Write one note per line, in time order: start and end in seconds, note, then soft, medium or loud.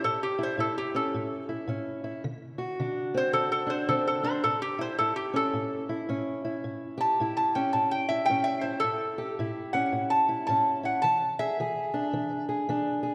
0.04 0.56 A2 medium
0.04 0.22 A4 medium
0.23 0.41 G4 loud
0.39 0.58 E4 medium
0.43 0.60 C5 medium
0.58 1.09 A2 medium
0.58 1.48 E4 medium
0.58 0.77 A4 medium
0.78 0.96 G4 medium
0.95 1.67 C#4 medium
0.95 1.49 A4 medium
1.14 1.65 A2 medium
1.49 2.03 E4 medium
1.67 2.19 A2 medium
1.67 2.21 C#4 medium
2.04 2.22 E4 medium
2.24 2.75 D3 medium
2.58 4.44 F#4 medium
2.79 3.30 D3 medium
2.79 3.65 D4 medium
3.14 3.88 C4 medium
3.14 3.34 C5 loud
3.33 3.84 D3 medium
3.33 3.50 A4 medium
3.52 3.70 A4 medium
3.67 4.22 D4 medium
3.67 3.88 C5 medium
3.89 4.40 D3 medium
3.89 4.42 C4 medium
3.89 4.06 A4 medium
4.08 4.25 A4 medium
4.23 4.42 D4 medium
4.23 4.43 C5 medium
4.44 4.95 A2 medium
4.44 4.61 A4 medium
4.62 4.80 G4 loud
4.79 5.00 E4 medium
4.79 4.99 C5 medium
4.99 5.50 A2 medium
4.99 5.89 E4 medium
4.99 5.16 A4 medium
5.16 5.34 G4 medium
5.34 6.09 C#4 medium
5.34 5.89 A4 loud
5.54 6.04 A2 medium
5.89 6.44 E4 medium
6.09 6.60 A2 medium
6.09 7.01 C#4 medium
6.45 7.21 E4 medium
6.64 7.15 A2 medium
6.98 8.81 G4 medium
6.98 7.18 A5 medium
7.20 7.70 A2 medium
7.20 8.10 E4 medium
7.37 7.55 A5 medium
7.55 8.29 C#4 medium
7.55 7.73 G5 medium
7.73 8.24 A2 medium
7.73 7.91 A5 medium
7.91 8.09 G5 loud
8.09 8.63 E4 medium
8.09 8.27 E5 loud
8.26 8.45 G5 loud
8.30 8.80 A2 medium
8.30 8.82 C#4 medium
8.44 8.63 E5 loud
8.61 9.39 E4 medium
8.61 8.81 C5 medium
8.80 9.35 A4 loud
8.84 9.34 A2 medium
9.18 11.00 G4 medium
9.39 9.89 A2 medium
9.39 10.27 E4 medium
9.73 10.48 C#4 medium
9.73 10.09 F#5 medium
9.93 10.43 A2 medium
10.10 10.45 A5 loud
10.29 10.82 E4 medium
10.47 10.99 A2 medium
10.47 11.01 C#4 medium
10.47 10.83 A5 loud
10.83 11.01 E4 medium
10.83 11.02 F#5 medium
11.02 11.54 E3 medium
11.02 11.38 A5 loud
11.39 11.59 G#4 medium
11.39 12.45 E5 loud
11.60 12.09 E3 medium
11.60 12.48 G#4 medium
11.94 12.68 D4 medium
12.13 12.63 E3 medium
12.49 13.02 G#4 medium
12.69 13.15 E3 medium
12.69 13.15 D4 medium
13.03 13.15 G#4 medium